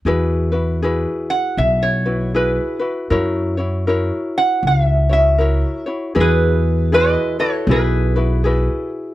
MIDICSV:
0, 0, Header, 1, 4, 480
1, 0, Start_track
1, 0, Key_signature, 4, "major"
1, 0, Tempo, 763359
1, 34, Time_signature, 4, 2, 24, 8
1, 5750, End_track
2, 0, Start_track
2, 0, Title_t, "Resonator guitar played with a steel bar"
2, 0, Program_c, 0, 25
2, 817, Note_on_c, 0, 78, 85
2, 995, Note_on_c, 0, 76, 83
2, 1005, Note_off_c, 0, 78, 0
2, 1146, Note_off_c, 0, 76, 0
2, 1148, Note_on_c, 0, 73, 74
2, 1480, Note_off_c, 0, 73, 0
2, 1483, Note_on_c, 0, 71, 58
2, 1841, Note_off_c, 0, 71, 0
2, 2752, Note_on_c, 0, 78, 89
2, 2915, Note_off_c, 0, 78, 0
2, 2937, Note_on_c, 0, 77, 83
2, 3050, Note_off_c, 0, 77, 0
2, 3050, Note_on_c, 0, 76, 83
2, 3217, Note_off_c, 0, 76, 0
2, 3224, Note_on_c, 0, 76, 74
2, 3671, Note_off_c, 0, 76, 0
2, 3900, Note_on_c, 0, 68, 64
2, 3903, Note_on_c, 0, 71, 81
2, 4341, Note_off_c, 0, 68, 0
2, 4343, Note_off_c, 0, 71, 0
2, 4364, Note_on_c, 0, 71, 78
2, 4367, Note_on_c, 0, 75, 96
2, 4632, Note_off_c, 0, 71, 0
2, 4633, Note_off_c, 0, 75, 0
2, 4651, Note_on_c, 0, 69, 65
2, 4654, Note_on_c, 0, 73, 83
2, 4822, Note_off_c, 0, 69, 0
2, 4842, Note_off_c, 0, 73, 0
2, 4849, Note_on_c, 0, 71, 71
2, 4852, Note_on_c, 0, 68, 54
2, 5358, Note_off_c, 0, 71, 0
2, 5358, Note_on_c, 0, 69, 71
2, 5588, Note_off_c, 0, 69, 0
2, 5589, Note_off_c, 0, 68, 0
2, 5750, End_track
3, 0, Start_track
3, 0, Title_t, "Ukulele"
3, 0, Program_c, 1, 24
3, 38, Note_on_c, 1, 68, 63
3, 41, Note_on_c, 1, 64, 69
3, 43, Note_on_c, 1, 66, 76
3, 49, Note_on_c, 1, 71, 79
3, 318, Note_off_c, 1, 71, 0
3, 323, Note_off_c, 1, 68, 0
3, 324, Note_off_c, 1, 66, 0
3, 326, Note_on_c, 1, 71, 47
3, 332, Note_off_c, 1, 64, 0
3, 332, Note_on_c, 1, 66, 41
3, 339, Note_on_c, 1, 64, 37
3, 514, Note_off_c, 1, 71, 0
3, 516, Note_off_c, 1, 66, 0
3, 518, Note_off_c, 1, 64, 0
3, 519, Note_on_c, 1, 68, 57
3, 526, Note_on_c, 1, 64, 57
3, 530, Note_on_c, 1, 66, 65
3, 531, Note_on_c, 1, 71, 63
3, 1284, Note_off_c, 1, 71, 0
3, 1289, Note_off_c, 1, 68, 0
3, 1292, Note_on_c, 1, 71, 46
3, 1293, Note_off_c, 1, 66, 0
3, 1296, Note_on_c, 1, 66, 41
3, 1300, Note_off_c, 1, 64, 0
3, 1303, Note_on_c, 1, 64, 36
3, 1468, Note_off_c, 1, 64, 0
3, 1472, Note_off_c, 1, 71, 0
3, 1474, Note_off_c, 1, 66, 0
3, 1474, Note_on_c, 1, 68, 47
3, 1476, Note_on_c, 1, 64, 51
3, 1482, Note_on_c, 1, 66, 54
3, 1484, Note_on_c, 1, 71, 57
3, 1750, Note_off_c, 1, 71, 0
3, 1755, Note_off_c, 1, 68, 0
3, 1757, Note_on_c, 1, 71, 48
3, 1758, Note_off_c, 1, 66, 0
3, 1763, Note_off_c, 1, 64, 0
3, 1765, Note_on_c, 1, 66, 41
3, 1771, Note_on_c, 1, 64, 34
3, 1948, Note_off_c, 1, 64, 0
3, 1949, Note_off_c, 1, 71, 0
3, 1951, Note_off_c, 1, 66, 0
3, 1952, Note_on_c, 1, 70, 69
3, 1955, Note_on_c, 1, 64, 77
3, 1959, Note_on_c, 1, 66, 79
3, 1961, Note_on_c, 1, 73, 78
3, 2239, Note_off_c, 1, 73, 0
3, 2244, Note_off_c, 1, 70, 0
3, 2247, Note_off_c, 1, 66, 0
3, 2247, Note_on_c, 1, 73, 51
3, 2249, Note_off_c, 1, 64, 0
3, 2255, Note_on_c, 1, 66, 45
3, 2260, Note_on_c, 1, 64, 40
3, 2430, Note_off_c, 1, 64, 0
3, 2432, Note_off_c, 1, 66, 0
3, 2432, Note_off_c, 1, 73, 0
3, 2435, Note_on_c, 1, 70, 56
3, 2438, Note_on_c, 1, 64, 61
3, 2440, Note_on_c, 1, 66, 58
3, 2446, Note_on_c, 1, 73, 66
3, 3195, Note_off_c, 1, 73, 0
3, 3200, Note_off_c, 1, 70, 0
3, 3203, Note_on_c, 1, 73, 49
3, 3209, Note_off_c, 1, 66, 0
3, 3210, Note_off_c, 1, 64, 0
3, 3211, Note_on_c, 1, 66, 45
3, 3212, Note_on_c, 1, 64, 35
3, 3383, Note_off_c, 1, 73, 0
3, 3384, Note_off_c, 1, 64, 0
3, 3386, Note_on_c, 1, 70, 52
3, 3387, Note_off_c, 1, 66, 0
3, 3391, Note_on_c, 1, 64, 51
3, 3395, Note_on_c, 1, 66, 49
3, 3400, Note_on_c, 1, 73, 63
3, 3677, Note_off_c, 1, 73, 0
3, 3682, Note_off_c, 1, 70, 0
3, 3683, Note_off_c, 1, 66, 0
3, 3685, Note_on_c, 1, 73, 49
3, 3686, Note_off_c, 1, 64, 0
3, 3690, Note_on_c, 1, 66, 41
3, 3695, Note_on_c, 1, 64, 35
3, 3862, Note_off_c, 1, 64, 0
3, 3863, Note_off_c, 1, 66, 0
3, 3863, Note_off_c, 1, 73, 0
3, 3866, Note_on_c, 1, 68, 66
3, 3870, Note_on_c, 1, 64, 65
3, 3870, Note_on_c, 1, 66, 68
3, 3874, Note_on_c, 1, 71, 72
3, 4345, Note_off_c, 1, 68, 0
3, 4353, Note_on_c, 1, 68, 55
3, 4354, Note_off_c, 1, 71, 0
3, 4355, Note_off_c, 1, 64, 0
3, 4357, Note_on_c, 1, 64, 56
3, 4360, Note_off_c, 1, 66, 0
3, 4362, Note_on_c, 1, 66, 56
3, 4366, Note_on_c, 1, 71, 65
3, 4640, Note_off_c, 1, 71, 0
3, 4645, Note_off_c, 1, 68, 0
3, 4646, Note_off_c, 1, 66, 0
3, 4647, Note_on_c, 1, 71, 49
3, 4649, Note_off_c, 1, 64, 0
3, 4654, Note_on_c, 1, 66, 40
3, 4661, Note_on_c, 1, 64, 39
3, 4830, Note_off_c, 1, 71, 0
3, 4831, Note_off_c, 1, 64, 0
3, 4832, Note_on_c, 1, 68, 50
3, 4835, Note_off_c, 1, 66, 0
3, 4838, Note_on_c, 1, 64, 58
3, 4842, Note_on_c, 1, 66, 54
3, 4848, Note_on_c, 1, 71, 58
3, 5122, Note_off_c, 1, 71, 0
3, 5125, Note_off_c, 1, 68, 0
3, 5127, Note_off_c, 1, 66, 0
3, 5128, Note_off_c, 1, 64, 0
3, 5129, Note_on_c, 1, 71, 51
3, 5135, Note_on_c, 1, 66, 46
3, 5141, Note_on_c, 1, 64, 40
3, 5305, Note_off_c, 1, 71, 0
3, 5307, Note_off_c, 1, 64, 0
3, 5307, Note_off_c, 1, 66, 0
3, 5307, Note_on_c, 1, 68, 53
3, 5315, Note_on_c, 1, 64, 54
3, 5315, Note_on_c, 1, 66, 58
3, 5318, Note_on_c, 1, 71, 61
3, 5750, Note_off_c, 1, 64, 0
3, 5750, Note_off_c, 1, 66, 0
3, 5750, Note_off_c, 1, 68, 0
3, 5750, Note_off_c, 1, 71, 0
3, 5750, End_track
4, 0, Start_track
4, 0, Title_t, "Upright bass"
4, 0, Program_c, 2, 32
4, 31, Note_on_c, 2, 40, 71
4, 657, Note_off_c, 2, 40, 0
4, 989, Note_on_c, 2, 35, 77
4, 1616, Note_off_c, 2, 35, 0
4, 1951, Note_on_c, 2, 42, 83
4, 2577, Note_off_c, 2, 42, 0
4, 2910, Note_on_c, 2, 37, 81
4, 3535, Note_off_c, 2, 37, 0
4, 3873, Note_on_c, 2, 40, 88
4, 4496, Note_off_c, 2, 40, 0
4, 4822, Note_on_c, 2, 35, 94
4, 5448, Note_off_c, 2, 35, 0
4, 5750, End_track
0, 0, End_of_file